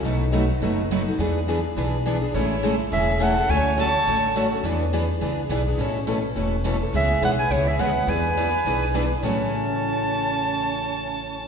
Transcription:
X:1
M:4/4
L:1/8
Q:"Swing" 1/4=209
K:A
V:1 name="Clarinet"
z8 | z8 | c3 z e2 f2 | g2 a4- a z |
z8 | z8 | e2 f g c e f2 | g6- g z |
a8- | a8 |]
V:2 name="Violin"
z8 | z8 | E3 z G2 A2 | c2 c4- c z |
z8 | z8 | G2 B B E G B2 | B6- B z |
C8- | C8 |]
V:3 name="Steel-string acoustic guitar"
[B,,F,A,^DFB] z [B,,F,A,DFB] z [B,,F,A,DFB] z [B,,F,A,DFB] z | [E,B,DGB] z [E,B,DGB] z [E,B,DGB] z [E,B,DGB] z | [E,G,CEA] z [E,G,CEA] z [E,G,CEA] z [E,G,CEA] z | [D,A,CFA] z [D,A,CFA] z [D,A,CFA] z [D,A,CFA] z |
[E,B,DGB] z [E,B,DGB] z [E,B,DGB] z [E,B,DGB] z | [A,CEB] z [A,CEB] z [A,CEB] z [A,CEB] z | [C,G,B,EG] z [C,G,B,EG] z [C,G,B,EG] z [C,G,B,EG] z | [E,B,DGB] z [E,B,DGB] z [E,B,DGB] z [E,B,DGB] z |
[A,,C,F,CE]8- | [A,,C,F,CE]8 |]
V:4 name="Steel-string acoustic guitar"
[B,,F,A,^DF] z [B,,F,A,DF] z [B,,F,A,DF] z [B,,F,A,DF] [A,DF] | [E,B,DG] z [E,B,DG] z [E,B,DG] z [E,B,DG] [B,DG] | [C,E,A,CG] z [C,E,A,CG] z [C,E,A,CG] z [C,E,A,CG] [A,CG] | [D,F,A,CF] z [D,F,A,CF] z [D,F,A,CF] z [D,F,A,CF] [A,CF] |
[E,B,DG] z [E,B,DG] z [E,B,DG] z [E,B,DG] [B,DG] | [B,,E,A,CA] z [B,,E,A,CA] z [B,,E,A,CA] z [B,,E,A,CA] [A,CA] | [C,E,B,CG] z [C,E,B,CG] z [C,E,B,CG] z [C,E,B,CG] z | [E,B,DG] z [E,B,DG] z [E,B,DG] z [E,B,DG] z |
[A,,C,E,A,CF]8- | [A,,C,E,A,CF]8 |]
V:5 name="Upright bass" clef=bass
B,,,4 F,,,4 | E,,4 B,,,4 | A,,,4 E,,,4 | D,,4 A,,,4 |
E,,4 C,,2 B,,,2 | A,,,4 E,,,4 | C,,2 B,,,2 C,,2 D,,2 | E,,4 B,,,4 |
A,,,8- | A,,,8 |]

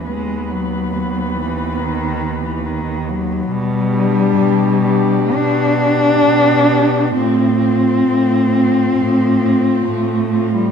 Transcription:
X:1
M:4/4
L:1/16
Q:1/4=67
K:B
V:1 name="Cello"
B16 | [K:Gmix] z2 G4 G4 G4 G2 | F2 F4 F4 F4 F2 |]
V:2 name="Cello"
B,16 | [K:Gmix] z2 D4 D4 D4 D2 | C2 C4 C4 C4 C2 |]
V:3 name="Cello" clef=bass
G,2 F,4 E,2 D,3 E, D,2 F,2 | [K:Gmix] G,8 D8 | C12 A,3 G, |]
V:4 name="Cello" clef=bass
D,,16 | [K:Gmix] B,,4 B,,4 B,,4 B,,4 | A,,4 A,,4 A,,4 A,,4 |]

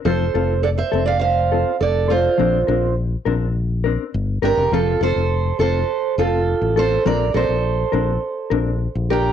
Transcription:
X:1
M:4/4
L:1/16
Q:1/4=103
K:F
V:1 name="Steel-string acoustic guitar"
[Ac]4 [Ad] [ce]2 [df] [cf]4 [Ad]2 [Fc]2- | [Fc]4 z8 z2 [GB]2 | [FA]2 [Ac]4 [Ac]4 [FA]4 [Ac]2 | [Bd]2 [Ac]12 [GB]2 |]
V:2 name="Clean electric guitar"
[F,CFA]2 [CFA]2 z2 [CA]2 z2 [CFA]2 z2 [CFA]2 | [F,CD]2 [CDB]2 z2 [CDB]2 z2 [CDB]2 z2 [CDB]2 | [F,CFA]2 [CFA]2 z2 [CFA]2 z2 [CFA]2 z2 [CFA]2 | [F,CDB]2 [CB]2 z2 [CDB]2 z2 [CDB]2 z2 [DB]2 |]
V:3 name="Fingered electric bass" clef=bass
F,,,2 F,,,4 F,,,6 F,,,4 | B,,,2 B,,,4 B,,,6 G,,,2 G,,, F,,, | F,,,2 F,,, F,,,3 F,,,2 z2 F,,,3 A,,,3 | B,,,2 B,,, B,,,3 B,,,2 z2 B,,,3 B,,,3 |]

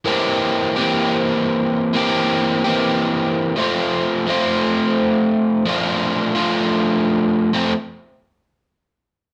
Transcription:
X:1
M:4/4
L:1/8
Q:1/4=128
K:F
V:1 name="Overdriven electric guitar"
[E,B,CG]3 [E,B,CG]4- [E,B,CG] | [E,B,CG]3 [E,B,CG]4 [F,A,CF]- | [F,A,CF]2 [F,A,CF]4- [F,A,CF] z | [F,A,DF]3 [F,A,DF]4- [F,A,DF] |
[F,A,C] z6 z |]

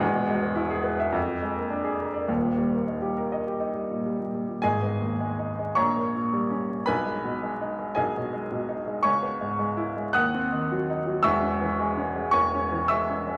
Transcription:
X:1
M:4/4
L:1/16
Q:1/4=109
K:G#m
V:1 name="Grand piano"
z16 | z16 | [Gdg]8 [_d_b_d']8 | [Bgb]8 [Gdg]6 z2 |
[cgc']8 [_g_e'_g']8 | [ec'e']8 [cgc']4 [ec'e']4 |]
V:2 name="Grand piano" clef=bass
[E,,,E,,] B,, G, B, E G B e ^E,, ^E, G, A, =D G A =d | [D,,,D,,] A,, =G, A, D =G A d G D G, A,, G, A,, G, A,, | (3G,,,2 B,2 D,,2 (3G,2 D2 G,2 (3_B,,,2 _B,2 _B,,2 (3=G,2 _D2 G,2 | (3B,,,2 G,2 B,,2 (3G,2 D2 G,2 (3B,,,2 B,,2 G,2 (3B,,2 D2 G,2 |
(3C,,2 B,2 G,,2 (3G,2 E2 G,2 (3_E,,2 =C2 _E,2 (3_G,2 _E2 G,2 | (3[E,,,E,,]2 C2 E,2 (3G,2 C2 G,2 (3E,,2 C2 E,2 (3G,2 C2 G,2 |]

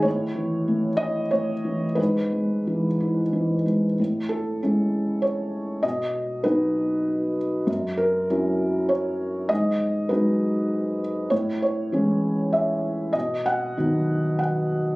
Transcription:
X:1
M:3/4
L:1/8
Q:1/4=97
K:Alyd
V:1 name="Felt piano"
c3 d c2 | B4- B z | z A3 c2 | d2 B3 z |
z ^A3 c2 | d2 B3 z | c c3 e2 | d f3 f2 |]
V:2 name="Felt piano" clef=bass
A,, E, A, E A, E, | G,, G, E, E E, G, | A,,2 [G,CE]4 | B,,2 [F,B,D]4 |
F,,2 [F,CE]4 | G,,2 [F,G,D]4 | A,,2 [E,G,C]4 | B,,2 [D,F,B,]4 |]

